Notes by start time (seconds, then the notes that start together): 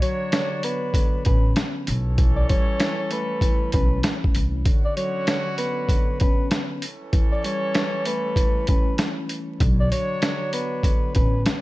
Already playing: D3 F#3 D4 C#5
0.02 F#3 C#5, closed hi-hat
0.32 D3, snare, closed hi-hat
0.63 B3 B4, closed hi-hat
0.94 D3, kick, closed hi-hat
1.25 A1 C#4 B4, kick, closed hi-hat
1.56 snare, closed hi-hat
1.87 B1 E3 C#4 A4, closed hi-hat
2.18 E3, kick, closed hi-hat
2.36 D5
2.49 G3 C#5, kick, closed hi-hat
2.80 E3, snare, closed hi-hat
3.11 A3 B4, closed hi-hat
3.41 E3, kick, closed hi-hat
3.72 B1 C#4 B4, kick, closed hi-hat
4.03 snare, closed hi-hat
4.24 kick
4.35 C2, closed hi-hat
4.65 D3 C#4 F#4, kick, closed hi-hat
4.85 D5
4.97 F#3 C#5, closed hi-hat
5.27 D3, snare, closed hi-hat
5.58 B3 B4, closed hi-hat
5.89 D3, kick, closed hi-hat
6.20 C#4 B4, kick, closed hi-hat
6.51 snare, closed hi-hat
6.82 E3 C#4 A4, closed hi-hat
7.13 E3, kick, closed hi-hat
7.32 D5
7.44 G3 C#5, closed hi-hat
7.75 E3, snare, closed hi-hat
8.05 A3 B4, closed hi-hat
8.36 E3, kick, closed hi-hat
8.67 C#4 B4, kick, closed hi-hat
8.98 snare, closed hi-hat
9.29 closed hi-hat
9.60 B1 D3 F#3 D4 C#5, kick, closed hi-hat
9.80 D5
9.92 F#3 C#5, closed hi-hat
10.22 D3, snare, closed hi-hat
10.53 B3 B4, closed hi-hat
10.83 D3, kick, closed hi-hat
11.15 A1 C#4 B4, kick, closed hi-hat
11.46 snare, closed hi-hat